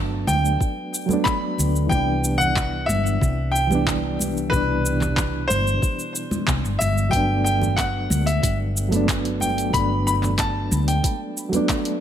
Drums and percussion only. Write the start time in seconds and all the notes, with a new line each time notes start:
0.27 high conga, shaker
0.45 shaker
0.61 kick, shaker
0.94 shaker
1.09 high conga, shaker
1.26 kick, clap, shaker
1.58 high conga, shaker
1.76 shaker
1.91 kick, shaker
2.24 shaker
2.40 low conga, shaker
2.56 kick, clap, shaker
2.89 high conga, shaker
3.06 shaker
3.21 kick, shaker
3.56 shaker
3.71 high conga, shaker
3.87 kick, clap, shaker
4.19 high conga, shaker
4.37 shaker
4.52 kick, shaker
4.86 shaker
5.01 clap, low conga, shaker
5.17 kick, clap, shaker
5.50 high conga, shaker
5.67 shaker
5.82 kick, shaker
5.99 shaker
6.16 shaker
6.31 high conga, shaker
6.47 kick, clap, shaker
6.65 shaker
6.81 high conga, shaker
6.98 shaker
7.12 kick, open hi-hat, shaker
7.47 shaker
7.62 low conga, shaker
7.78 kick, clap, open hi-hat, shaker
8.10 high conga, shaker
8.27 open hi-hat, shaker
8.43 kick, open hi-hat, shaker
8.77 shaker
8.92 open hi-hat, high conga, shaker
9.08 kick, clap, open hi-hat, shaker
9.25 open hi-hat
9.40 high conga, shaker
9.58 open hi-hat, shaker
9.73 kick, open hi-hat, shaker
10.08 shaker
10.23 clap, low conga, shaker
10.38 kick, clap, open hi-hat, shaker
10.71 high conga, shaker
10.88 open hi-hat, shaker
11.04 kick, open hi-hat, shaker
11.37 shaker
11.53 open hi-hat, high conga, shaker
11.69 kick, clap, open hi-hat, shaker
11.85 open hi-hat